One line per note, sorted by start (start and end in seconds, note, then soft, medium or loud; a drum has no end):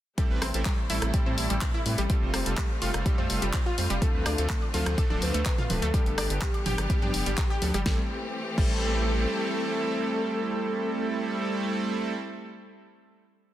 0.18 0.24 A2 loud
0.18 3.98 C3 medium
0.18 3.98 G3 medium
0.18 0.22 G3 medium
0.18 0.24 G3 medium
0.18 3.98 A3 medium
0.18 0.24 A3 medium
0.18 0.24 C4 medium
0.18 0.24 E4 medium
0.18 2.08 E4 medium
0.18 0.22 G4 medium
0.18 0.24 A4 loud
0.18 kick loud
0.18 closed hi-hat medium
0.30 0.39 A1 medium
0.30 0.39 A2 medium
0.30 0.39 G3 medium
0.30 0.39 A3 medium
0.30 0.39 C4 medium
0.30 0.39 E4 medium
0.30 0.39 B4 medium
0.42 0.52 A1 loud
0.42 0.46 C4 medium
0.42 0.46 C5 medium
0.42 cross-stick medium
0.42 open hi-hat loud
0.54 0.63 A1 medium
0.54 0.60 A2 medium
0.54 0.60 G3 medium
0.54 0.60 A3 medium
0.54 0.60 C4 medium
0.54 0.60 E4 medium
0.54 0.60 A4 loud
0.54 closed hi-hat medium
0.65 0.72 A2 medium
0.65 0.69 G3 medium
0.65 0.72 G3 medium
0.65 0.72 A3 medium
0.65 0.72 C4 medium
0.65 0.72 E4 medium
0.65 0.69 G4 medium
0.65 0.72 A4 medium
0.65 kick loud
0.65 clap loud
0.65 closed hi-hat medium
0.90 1.00 A1 loud
0.90 1.11 A2 medium
0.90 1.11 G3 medium
0.90 1.11 A3 medium
0.90 1.11 C4 medium
0.90 0.97 E4 loud
0.90 1.11 E4 medium
0.90 1.11 A4 medium
0.90 0.97 E5 medium
0.90 open hi-hat medium
1.02 1.11 A1 medium
1.02 cross-stick medium
1.02 closed hi-hat medium
1.14 1.24 A2 loud
1.14 1.18 G3 medium
1.14 1.24 G3 medium
1.14 1.24 A3 medium
1.14 1.24 C4 medium
1.14 1.24 E4 medium
1.14 1.18 G4 medium
1.14 1.24 A4 loud
1.14 kick loud
1.14 closed hi-hat medium
1.26 1.47 A2 loud
1.26 1.35 A2 medium
1.26 1.47 G3 medium
1.26 1.47 A3 medium
1.26 1.47 C4 medium
1.26 1.29 C4 medium
1.26 1.47 E4 medium
1.26 1.47 A4 loud
1.26 1.29 C5 medium
1.38 1.48 A1 loud
1.38 open hi-hat loud
1.50 1.59 A1 medium
1.50 1.56 A2 medium
1.50 1.56 G3 medium
1.50 1.54 G3 medium
1.50 1.56 A3 medium
1.50 1.56 C4 medium
1.50 1.56 E4 medium
1.50 1.54 G4 medium
1.50 1.56 A4 loud
1.50 closed hi-hat medium
1.61 1.68 A2 medium
1.61 1.68 G3 medium
1.61 1.68 A3 medium
1.61 1.68 C4 medium
1.61 1.68 E4 medium
1.61 1.68 B4 medium
1.61 kick loud
1.61 clap loud
1.61 closed hi-hat medium
1.74 1.78 E4 loud
1.74 1.78 E5 medium
1.86 1.96 A2 medium
1.86 1.92 G3 medium
1.86 1.92 A3 medium
1.86 1.92 C4 medium
1.86 1.92 E4 medium
1.86 1.92 B4 medium
1.86 open hi-hat medium
1.98 2.07 A1 medium
1.98 2.01 G3 loud
1.98 2.01 G4 medium
1.98 closed hi-hat medium
2.10 2.16 G3 loud
2.10 2.14 G3 medium
2.10 2.16 A3 medium
2.10 2.16 C4 medium
2.10 5.90 F4 medium
2.10 2.16 F4 medium
2.10 2.14 G4 medium
2.10 2.16 A4 loud
2.10 kick loud
2.10 closed hi-hat medium
2.22 2.31 F1 medium
2.22 2.31 G3 medium
2.22 2.31 A3 medium
2.22 2.31 C4 medium
2.22 2.31 F4 medium
2.22 2.31 C5 medium
2.34 2.44 F1 medium
2.34 2.38 C4 medium
2.34 2.38 C5 medium
2.34 cross-stick medium
2.34 open hi-hat loud
2.46 2.55 F1 medium
2.46 2.52 G3 medium
2.46 2.52 A3 medium
2.46 2.52 C4 medium
2.46 2.52 F4 medium
2.46 2.52 A4 loud
2.46 closed hi-hat medium
2.57 2.64 G3 medium
2.57 2.61 G3 medium
2.57 2.64 A3 medium
2.57 2.64 C4 medium
2.57 2.64 F4 medium
2.57 2.61 G4 medium
2.57 2.64 A4 medium
2.57 kick loud
2.57 clap loud
2.57 closed hi-hat medium
2.82 2.92 F1 loud
2.82 3.03 G3 medium
2.82 3.03 A3 medium
2.82 3.03 C4 medium
2.82 3.03 F4 medium
2.82 2.89 F4 loud
2.82 3.03 A4 medium
2.82 2.89 F5 medium
2.82 open hi-hat medium
2.94 3.03 F1 medium
2.94 cross-stick medium
2.94 closed hi-hat medium
3.06 3.16 G3 medium
3.06 3.10 G3 medium
3.06 3.16 A3 medium
3.06 3.16 C4 medium
3.06 3.16 F4 medium
3.06 3.10 G4 medium
3.06 3.16 A4 loud
3.06 kick loud
3.06 closed hi-hat medium
3.18 3.27 F2 medium
3.18 3.39 G3 medium
3.18 3.39 A3 medium
3.18 3.39 C4 medium
3.18 3.21 C4 medium
3.18 3.39 F4 medium
3.18 3.39 A4 loud
3.18 3.21 C5 medium
3.30 3.40 F1 loud
3.30 open hi-hat loud
3.42 3.51 F1 medium
3.42 3.46 G3 medium
3.42 3.48 G3 medium
3.42 3.48 A3 medium
3.42 3.48 C4 medium
3.42 3.48 F4 medium
3.42 3.46 G4 medium
3.42 3.48 A4 loud
3.42 closed hi-hat medium
3.54 3.60 G3 medium
3.54 3.60 A3 medium
3.54 3.60 C4 medium
3.54 3.60 F4 medium
3.54 3.60 C5 medium
3.54 kick loud
3.54 clap loud
3.54 closed hi-hat medium
3.66 3.70 F4 loud
3.66 3.70 F5 medium
3.78 3.88 F2 medium
3.78 3.84 G3 medium
3.78 3.84 A3 medium
3.78 3.84 C4 medium
3.78 3.84 F4 medium
3.78 3.84 C5 medium
3.78 open hi-hat loud
3.90 3.99 F1 medium
3.90 3.93 G3 loud
3.90 3.93 G4 medium
3.90 closed hi-hat medium
4.02 7.82 D3 medium
4.02 4.08 F3 loud
4.02 4.08 A3 medium
4.02 4.06 A3 medium
4.02 5.92 A3 medium
4.02 4.08 C4 medium
4.02 5.92 C4 medium
4.02 4.08 D4 medium
4.02 4.65 A4 loud
4.02 4.06 A4 medium
4.02 4.08 A4 loud
4.02 kick loud
4.02 closed hi-hat medium
4.14 4.23 D2 medium
4.14 4.23 F3 medium
4.14 4.23 A3 medium
4.14 4.23 C4 medium
4.14 4.23 D4 medium
4.14 4.23 B4 loud
4.26 4.36 D2 loud
4.26 4.30 D4 medium
4.26 4.30 D5 medium
4.26 cross-stick medium
4.26 open hi-hat loud
4.26 high woodblock medium
4.38 4.47 D2 medium
4.38 4.44 F3 medium
4.38 4.44 A3 medium
4.38 4.44 C4 medium
4.38 4.44 D4 medium
4.38 4.44 A4 loud
4.38 closed hi-hat medium
4.50 4.56 F3 medium
4.50 4.56 A3 medium
4.50 4.53 A3 medium
4.50 4.56 C4 medium
4.50 4.56 D4 medium
4.50 4.56 A4 medium
4.50 4.53 A4 medium
4.50 kick loud
4.50 clap loud
4.50 closed hi-hat medium
4.62 high woodblock medium
4.74 4.84 D2 loud
4.74 4.95 F3 medium
4.74 4.95 A3 medium
4.74 4.95 C4 medium
4.74 4.95 D4 medium
4.74 4.81 F4 loud
4.74 4.95 A4 medium
4.74 5.17 A4 medium
4.74 4.81 F5 medium
4.74 open hi-hat loud
4.74 high conga medium
4.86 4.95 D2 medium
4.86 cross-stick medium
4.86 closed hi-hat medium
4.98 5.08 F3 medium
4.98 5.08 A3 medium
4.98 5.02 A3 medium
4.98 5.08 C4 medium
4.98 5.08 D4 medium
4.98 5.08 A4 loud
4.98 5.02 A4 medium
4.98 kick loud
4.98 closed hi-hat medium
4.98 high woodblock medium
5.10 5.19 D1 medium
5.10 5.31 F3 medium
5.10 5.31 A3 medium
5.10 5.31 C4 medium
5.10 5.31 D4 medium
5.10 5.13 D4 medium
5.10 5.31 A4 loud
5.10 5.13 D5 medium
5.10 high conga medium
5.22 5.32 D2 loud
5.22 5.72 B4 medium
5.22 open hi-hat loud
5.34 5.43 D2 medium
5.34 5.40 F3 medium
5.34 5.40 A3 medium
5.34 5.38 A3 medium
5.34 5.40 C4 medium
5.34 5.40 D4 medium
5.34 5.40 A4 loud
5.34 5.39 A4 medium
5.34 closed hi-hat medium
5.46 5.52 F3 medium
5.46 5.52 A3 medium
5.46 5.52 C4 medium
5.46 5.52 D4 medium
5.46 5.52 B4 medium
5.46 kick loud
5.46 clap loud
5.46 closed hi-hat medium
5.58 5.63 F4 loud
5.58 5.63 F5 medium
5.58 mid tom loud
5.70 5.80 D1 loud
5.70 5.76 F3 medium
5.70 5.76 A3 medium
5.70 5.76 C4 medium
5.70 5.76 D4 medium
5.70 6.33 A4 loud
5.70 5.76 B4 medium
5.70 mid tom medium
5.70 open hi-hat loud
5.70 high conga medium
5.82 5.91 D2 medium
5.82 5.85 A3 loud
5.82 5.85 A4 medium
5.82 closed hi-hat medium
5.94 6.00 G2 loud
5.94 5.98 G3 medium
5.94 7.84 G3 medium
5.94 6.00 B3 medium
5.94 7.84 B3 medium
5.94 6.00 D4 medium
5.94 5.98 G4 medium
5.94 6.00 G4 loud
5.94 7.84 G4 loud
5.94 kick loud
5.94 closed hi-hat medium
6.06 6.15 G1 medium
6.06 6.15 G2 medium
6.06 6.15 B3 medium
6.06 6.15 D4 medium
6.06 6.15 A4 medium
6.06 closed hi-hat soft
6.18 6.28 G1 loud
6.18 6.22 D4 medium
6.18 6.22 D5 medium
6.18 cross-stick medium
6.18 open hi-hat loud
6.18 high woodblock medium
6.30 6.39 G1 medium
6.30 6.36 G2 medium
6.30 6.36 B3 medium
6.30 6.36 D4 medium
6.30 6.36 G4 loud
6.30 closed hi-hat medium
6.42 6.48 G2 medium
6.42 6.45 G3 medium
6.42 6.48 B3 medium
6.42 6.48 D4 medium
6.42 6.48 G4 medium
6.42 6.45 G4 medium
6.42 7.77 G4 loud
6.42 kick loud
6.42 clap loud
6.42 closed hi-hat medium
6.54 closed hi-hat soft
6.54 high woodblock medium
6.66 6.76 G1 loud
6.66 6.87 G2 medium
6.66 6.87 B3 medium
6.66 6.87 D4 medium
6.66 6.87 G4 medium
6.66 6.73 G4 loud
6.66 6.73 G5 medium
6.66 mid tom loud
6.66 open hi-hat loud
6.66 high conga medium
6.78 6.87 G1 medium
6.78 cross-stick medium
6.78 closed hi-hat soft
6.90 7.00 G2 medium
6.90 6.94 G3 medium
6.90 7.00 B3 medium
6.90 7.00 D4 medium
6.90 7.00 G4 loud
6.90 6.94 G4 medium
6.90 kick loud
6.90 closed hi-hat medium
7.02 7.11 G2 medium
7.02 7.23 G2 loud
7.02 7.23 B3 medium
7.02 7.23 D4 medium
7.02 7.05 D4 medium
7.02 7.23 G4 loud
7.02 7.05 D5 medium
7.02 high conga medium
7.14 7.24 F1 loud
7.14 open hi-hat loud
7.26 7.35 G1 medium
7.26 7.32 G2 medium
7.26 7.31 G3 medium
7.26 7.32 B3 medium
7.26 7.32 D4 medium
7.26 7.32 G4 loud
7.26 7.30 G4 medium
7.26 closed hi-hat medium
7.38 7.44 G2 medium
7.38 7.44 B3 medium
7.38 7.44 D4 medium
7.38 7.44 A4 medium
7.38 kick loud
7.38 clap loud
7.38 closed hi-hat medium
7.50 7.54 G4 loud
7.50 7.54 G5 medium
7.62 7.72 D2 medium
7.62 7.68 B3 medium
7.62 7.68 D4 medium
7.62 7.68 A4 medium
7.62 open hi-hat loud
7.62 high conga medium
7.74 7.83 G1 medium
7.74 7.77 G3 loud
7.74 7.77 G4 medium
7.74 closed hi-hat medium
7.86 7.99 A1 loud
7.86 11.42 E3 medium
7.86 7.99 G3 medium
7.86 8.00 G3 medium
7.86 8.00 A3 medium
7.86 11.42 A3 medium
7.86 7.99 C4 medium
7.86 11.42 C4 medium
7.86 7.99 E4 medium
7.86 11.42 G4 medium
7.86 8.00 A4 loud
7.86 8.00 A4 medium
7.86 kick loud
7.86 snare medium
8.58 9.26 A1 loud
8.58 12.13 G3 medium
8.58 8.72 G3 medium
8.58 12.13 A3 medium
8.58 12.13 C4 medium
8.58 12.13 E4 medium
8.58 12.13 A4 medium
8.58 12.14 A4 loud
8.58 kick loud
8.58 crash medium